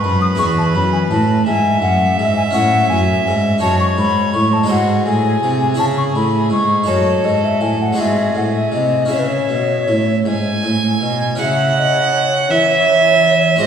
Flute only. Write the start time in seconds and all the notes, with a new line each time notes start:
0.04 B5
0.21 D#6
0.39 C#6
0.58 A5
0.74 B5
0.93 G#5
1.10 A5
1.46 G#5
1.82 F#5
2.18 E5
2.37 G#5
2.52 F#5
2.90 G#5
3.61 A5
3.80 C#6
3.98 B5
4.34 C#6
4.53 A5
4.70 F#5
5.07 G#5
5.79 A5
5.98 C#6
6.15 B5
6.52 C#6
6.88 C#5
7.25 D#5
7.45 E5
7.62 G#5
7.82 F#5
8.00 E5
8.37 F#5
8.56 E5
8.74 D#5
9.12 C#5
9.19 B4
9.28 C#5
11.40 E5
11.78 D#5
12.14 C#5
13.61 C5